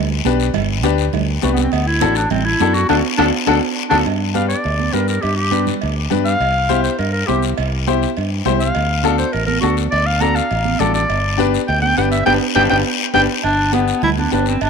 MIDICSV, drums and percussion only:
0, 0, Header, 1, 2, 480
1, 0, Start_track
1, 0, Key_signature, 1, "major"
1, 0, Tempo, 293112
1, 899, Time_signature, 4, 2, 24, 8
1, 24069, End_track
2, 0, Start_track
2, 0, Title_t, "Drums"
2, 407, Note_on_c, 9, 63, 78
2, 417, Note_on_c, 9, 73, 81
2, 571, Note_off_c, 9, 63, 0
2, 580, Note_off_c, 9, 73, 0
2, 651, Note_on_c, 9, 73, 76
2, 815, Note_off_c, 9, 73, 0
2, 881, Note_on_c, 9, 63, 39
2, 881, Note_on_c, 9, 64, 80
2, 887, Note_on_c, 9, 74, 69
2, 889, Note_on_c, 9, 56, 113
2, 1045, Note_off_c, 9, 63, 0
2, 1045, Note_off_c, 9, 64, 0
2, 1051, Note_off_c, 9, 74, 0
2, 1053, Note_off_c, 9, 56, 0
2, 1365, Note_on_c, 9, 73, 73
2, 1367, Note_on_c, 9, 63, 106
2, 1528, Note_off_c, 9, 73, 0
2, 1531, Note_off_c, 9, 63, 0
2, 1609, Note_on_c, 9, 73, 70
2, 1773, Note_off_c, 9, 73, 0
2, 1849, Note_on_c, 9, 74, 72
2, 1857, Note_on_c, 9, 63, 37
2, 1857, Note_on_c, 9, 64, 87
2, 1862, Note_on_c, 9, 56, 86
2, 2013, Note_off_c, 9, 74, 0
2, 2021, Note_off_c, 9, 63, 0
2, 2021, Note_off_c, 9, 64, 0
2, 2026, Note_off_c, 9, 56, 0
2, 2329, Note_on_c, 9, 73, 76
2, 2344, Note_on_c, 9, 63, 82
2, 2493, Note_off_c, 9, 73, 0
2, 2508, Note_off_c, 9, 63, 0
2, 2565, Note_on_c, 9, 73, 76
2, 2582, Note_on_c, 9, 63, 75
2, 2729, Note_off_c, 9, 73, 0
2, 2746, Note_off_c, 9, 63, 0
2, 2812, Note_on_c, 9, 63, 43
2, 2813, Note_on_c, 9, 74, 68
2, 2830, Note_on_c, 9, 56, 109
2, 2975, Note_off_c, 9, 63, 0
2, 2976, Note_off_c, 9, 74, 0
2, 2994, Note_off_c, 9, 56, 0
2, 3290, Note_on_c, 9, 73, 69
2, 3296, Note_on_c, 9, 63, 112
2, 3454, Note_off_c, 9, 73, 0
2, 3459, Note_off_c, 9, 63, 0
2, 3526, Note_on_c, 9, 73, 76
2, 3690, Note_off_c, 9, 73, 0
2, 3773, Note_on_c, 9, 74, 71
2, 3780, Note_on_c, 9, 56, 87
2, 3783, Note_on_c, 9, 63, 37
2, 3783, Note_on_c, 9, 64, 84
2, 3936, Note_off_c, 9, 74, 0
2, 3943, Note_off_c, 9, 56, 0
2, 3947, Note_off_c, 9, 63, 0
2, 3947, Note_off_c, 9, 64, 0
2, 4255, Note_on_c, 9, 73, 80
2, 4262, Note_on_c, 9, 63, 85
2, 4419, Note_off_c, 9, 73, 0
2, 4426, Note_off_c, 9, 63, 0
2, 4493, Note_on_c, 9, 73, 76
2, 4657, Note_off_c, 9, 73, 0
2, 4734, Note_on_c, 9, 74, 101
2, 4744, Note_on_c, 9, 65, 104
2, 4745, Note_on_c, 9, 63, 108
2, 4898, Note_off_c, 9, 74, 0
2, 4908, Note_off_c, 9, 63, 0
2, 4908, Note_off_c, 9, 65, 0
2, 5211, Note_on_c, 9, 74, 100
2, 5218, Note_on_c, 9, 63, 105
2, 5221, Note_on_c, 9, 65, 122
2, 5375, Note_off_c, 9, 74, 0
2, 5381, Note_off_c, 9, 63, 0
2, 5385, Note_off_c, 9, 65, 0
2, 5685, Note_on_c, 9, 63, 94
2, 5687, Note_on_c, 9, 74, 96
2, 5689, Note_on_c, 9, 65, 103
2, 5849, Note_off_c, 9, 63, 0
2, 5851, Note_off_c, 9, 74, 0
2, 5853, Note_off_c, 9, 65, 0
2, 6406, Note_on_c, 9, 74, 99
2, 6408, Note_on_c, 9, 63, 96
2, 6424, Note_on_c, 9, 65, 103
2, 6570, Note_off_c, 9, 74, 0
2, 6572, Note_off_c, 9, 63, 0
2, 6588, Note_off_c, 9, 65, 0
2, 6648, Note_on_c, 9, 74, 64
2, 6667, Note_on_c, 9, 56, 95
2, 6812, Note_off_c, 9, 74, 0
2, 6830, Note_off_c, 9, 56, 0
2, 7122, Note_on_c, 9, 73, 67
2, 7129, Note_on_c, 9, 63, 79
2, 7285, Note_off_c, 9, 73, 0
2, 7293, Note_off_c, 9, 63, 0
2, 7365, Note_on_c, 9, 73, 74
2, 7529, Note_off_c, 9, 73, 0
2, 7599, Note_on_c, 9, 74, 71
2, 7623, Note_on_c, 9, 56, 80
2, 7763, Note_off_c, 9, 74, 0
2, 7786, Note_off_c, 9, 56, 0
2, 7845, Note_on_c, 9, 63, 69
2, 8009, Note_off_c, 9, 63, 0
2, 8081, Note_on_c, 9, 63, 72
2, 8081, Note_on_c, 9, 73, 74
2, 8244, Note_off_c, 9, 73, 0
2, 8245, Note_off_c, 9, 63, 0
2, 8318, Note_on_c, 9, 73, 72
2, 8482, Note_off_c, 9, 73, 0
2, 8558, Note_on_c, 9, 74, 75
2, 8568, Note_on_c, 9, 56, 85
2, 8721, Note_off_c, 9, 74, 0
2, 8731, Note_off_c, 9, 56, 0
2, 9034, Note_on_c, 9, 63, 77
2, 9051, Note_on_c, 9, 73, 63
2, 9198, Note_off_c, 9, 63, 0
2, 9214, Note_off_c, 9, 73, 0
2, 9280, Note_on_c, 9, 64, 65
2, 9286, Note_on_c, 9, 73, 62
2, 9444, Note_off_c, 9, 64, 0
2, 9450, Note_off_c, 9, 73, 0
2, 9522, Note_on_c, 9, 56, 87
2, 9527, Note_on_c, 9, 74, 64
2, 9685, Note_off_c, 9, 56, 0
2, 9690, Note_off_c, 9, 74, 0
2, 10008, Note_on_c, 9, 73, 69
2, 10010, Note_on_c, 9, 63, 78
2, 10010, Note_on_c, 9, 64, 79
2, 10171, Note_off_c, 9, 73, 0
2, 10174, Note_off_c, 9, 63, 0
2, 10174, Note_off_c, 9, 64, 0
2, 10244, Note_on_c, 9, 73, 73
2, 10407, Note_off_c, 9, 73, 0
2, 10490, Note_on_c, 9, 74, 68
2, 10498, Note_on_c, 9, 56, 93
2, 10654, Note_off_c, 9, 74, 0
2, 10661, Note_off_c, 9, 56, 0
2, 10962, Note_on_c, 9, 73, 69
2, 10975, Note_on_c, 9, 63, 86
2, 11126, Note_off_c, 9, 73, 0
2, 11138, Note_off_c, 9, 63, 0
2, 11203, Note_on_c, 9, 73, 73
2, 11366, Note_off_c, 9, 73, 0
2, 11441, Note_on_c, 9, 74, 69
2, 11446, Note_on_c, 9, 56, 85
2, 11605, Note_off_c, 9, 74, 0
2, 11609, Note_off_c, 9, 56, 0
2, 11928, Note_on_c, 9, 73, 69
2, 11931, Note_on_c, 9, 63, 82
2, 12092, Note_off_c, 9, 73, 0
2, 12095, Note_off_c, 9, 63, 0
2, 12160, Note_on_c, 9, 73, 75
2, 12323, Note_off_c, 9, 73, 0
2, 12405, Note_on_c, 9, 56, 105
2, 12408, Note_on_c, 9, 74, 62
2, 12569, Note_off_c, 9, 56, 0
2, 12572, Note_off_c, 9, 74, 0
2, 12897, Note_on_c, 9, 73, 66
2, 12898, Note_on_c, 9, 63, 84
2, 13061, Note_off_c, 9, 63, 0
2, 13061, Note_off_c, 9, 73, 0
2, 13140, Note_on_c, 9, 73, 68
2, 13303, Note_off_c, 9, 73, 0
2, 13373, Note_on_c, 9, 74, 69
2, 13380, Note_on_c, 9, 56, 79
2, 13537, Note_off_c, 9, 74, 0
2, 13544, Note_off_c, 9, 56, 0
2, 13846, Note_on_c, 9, 73, 66
2, 13850, Note_on_c, 9, 63, 80
2, 13850, Note_on_c, 9, 64, 78
2, 13851, Note_on_c, 9, 66, 66
2, 14010, Note_off_c, 9, 73, 0
2, 14013, Note_off_c, 9, 63, 0
2, 14013, Note_off_c, 9, 64, 0
2, 14014, Note_off_c, 9, 66, 0
2, 14090, Note_on_c, 9, 73, 75
2, 14254, Note_off_c, 9, 73, 0
2, 14323, Note_on_c, 9, 56, 96
2, 14324, Note_on_c, 9, 74, 71
2, 14487, Note_off_c, 9, 56, 0
2, 14488, Note_off_c, 9, 74, 0
2, 14798, Note_on_c, 9, 63, 85
2, 14801, Note_on_c, 9, 73, 69
2, 14962, Note_off_c, 9, 63, 0
2, 14965, Note_off_c, 9, 73, 0
2, 15039, Note_on_c, 9, 73, 73
2, 15202, Note_off_c, 9, 73, 0
2, 15281, Note_on_c, 9, 74, 74
2, 15285, Note_on_c, 9, 56, 76
2, 15445, Note_off_c, 9, 74, 0
2, 15449, Note_off_c, 9, 56, 0
2, 15524, Note_on_c, 9, 63, 78
2, 15688, Note_off_c, 9, 63, 0
2, 15758, Note_on_c, 9, 63, 81
2, 15762, Note_on_c, 9, 73, 74
2, 15922, Note_off_c, 9, 63, 0
2, 15926, Note_off_c, 9, 73, 0
2, 16002, Note_on_c, 9, 73, 70
2, 16165, Note_off_c, 9, 73, 0
2, 16247, Note_on_c, 9, 74, 75
2, 16254, Note_on_c, 9, 56, 97
2, 16411, Note_off_c, 9, 74, 0
2, 16417, Note_off_c, 9, 56, 0
2, 16715, Note_on_c, 9, 63, 86
2, 16721, Note_on_c, 9, 73, 68
2, 16879, Note_off_c, 9, 63, 0
2, 16885, Note_off_c, 9, 73, 0
2, 16964, Note_on_c, 9, 73, 72
2, 17127, Note_off_c, 9, 73, 0
2, 17206, Note_on_c, 9, 74, 78
2, 17211, Note_on_c, 9, 56, 85
2, 17370, Note_off_c, 9, 74, 0
2, 17375, Note_off_c, 9, 56, 0
2, 17440, Note_on_c, 9, 63, 75
2, 17603, Note_off_c, 9, 63, 0
2, 17686, Note_on_c, 9, 63, 83
2, 17686, Note_on_c, 9, 64, 79
2, 17687, Note_on_c, 9, 73, 64
2, 17849, Note_off_c, 9, 63, 0
2, 17849, Note_off_c, 9, 64, 0
2, 17850, Note_off_c, 9, 73, 0
2, 17920, Note_on_c, 9, 73, 71
2, 18084, Note_off_c, 9, 73, 0
2, 18171, Note_on_c, 9, 56, 92
2, 18174, Note_on_c, 9, 74, 69
2, 18335, Note_off_c, 9, 56, 0
2, 18338, Note_off_c, 9, 74, 0
2, 18654, Note_on_c, 9, 63, 93
2, 18658, Note_on_c, 9, 73, 76
2, 18818, Note_off_c, 9, 63, 0
2, 18822, Note_off_c, 9, 73, 0
2, 18904, Note_on_c, 9, 73, 71
2, 19067, Note_off_c, 9, 73, 0
2, 19132, Note_on_c, 9, 74, 73
2, 19139, Note_on_c, 9, 56, 83
2, 19296, Note_off_c, 9, 74, 0
2, 19303, Note_off_c, 9, 56, 0
2, 19368, Note_on_c, 9, 63, 80
2, 19532, Note_off_c, 9, 63, 0
2, 19614, Note_on_c, 9, 73, 68
2, 19618, Note_on_c, 9, 63, 82
2, 19778, Note_off_c, 9, 73, 0
2, 19782, Note_off_c, 9, 63, 0
2, 19844, Note_on_c, 9, 73, 73
2, 20007, Note_off_c, 9, 73, 0
2, 20079, Note_on_c, 9, 74, 99
2, 20086, Note_on_c, 9, 65, 106
2, 20093, Note_on_c, 9, 63, 99
2, 20243, Note_off_c, 9, 74, 0
2, 20250, Note_off_c, 9, 65, 0
2, 20257, Note_off_c, 9, 63, 0
2, 20554, Note_on_c, 9, 74, 92
2, 20561, Note_on_c, 9, 65, 117
2, 20591, Note_on_c, 9, 63, 94
2, 20718, Note_off_c, 9, 74, 0
2, 20725, Note_off_c, 9, 65, 0
2, 20755, Note_off_c, 9, 63, 0
2, 20789, Note_on_c, 9, 74, 106
2, 20805, Note_on_c, 9, 65, 101
2, 20815, Note_on_c, 9, 63, 94
2, 20953, Note_off_c, 9, 74, 0
2, 20968, Note_off_c, 9, 65, 0
2, 20979, Note_off_c, 9, 63, 0
2, 21513, Note_on_c, 9, 74, 109
2, 21517, Note_on_c, 9, 63, 86
2, 21528, Note_on_c, 9, 65, 93
2, 21677, Note_off_c, 9, 74, 0
2, 21681, Note_off_c, 9, 63, 0
2, 21692, Note_off_c, 9, 65, 0
2, 21991, Note_on_c, 9, 74, 66
2, 22003, Note_on_c, 9, 56, 103
2, 22003, Note_on_c, 9, 63, 38
2, 22154, Note_off_c, 9, 74, 0
2, 22167, Note_off_c, 9, 56, 0
2, 22167, Note_off_c, 9, 63, 0
2, 22479, Note_on_c, 9, 73, 67
2, 22484, Note_on_c, 9, 63, 91
2, 22643, Note_off_c, 9, 73, 0
2, 22647, Note_off_c, 9, 63, 0
2, 22725, Note_on_c, 9, 73, 70
2, 22889, Note_off_c, 9, 73, 0
2, 22958, Note_on_c, 9, 74, 73
2, 22977, Note_on_c, 9, 63, 39
2, 22977, Note_on_c, 9, 64, 84
2, 22978, Note_on_c, 9, 56, 80
2, 23121, Note_off_c, 9, 74, 0
2, 23140, Note_off_c, 9, 63, 0
2, 23140, Note_off_c, 9, 64, 0
2, 23142, Note_off_c, 9, 56, 0
2, 23225, Note_on_c, 9, 63, 81
2, 23388, Note_off_c, 9, 63, 0
2, 23448, Note_on_c, 9, 73, 76
2, 23456, Note_on_c, 9, 66, 68
2, 23474, Note_on_c, 9, 63, 73
2, 23612, Note_off_c, 9, 73, 0
2, 23620, Note_off_c, 9, 66, 0
2, 23638, Note_off_c, 9, 63, 0
2, 23679, Note_on_c, 9, 73, 72
2, 23843, Note_off_c, 9, 73, 0
2, 23928, Note_on_c, 9, 74, 76
2, 23933, Note_on_c, 9, 56, 110
2, 24069, Note_off_c, 9, 56, 0
2, 24069, Note_off_c, 9, 74, 0
2, 24069, End_track
0, 0, End_of_file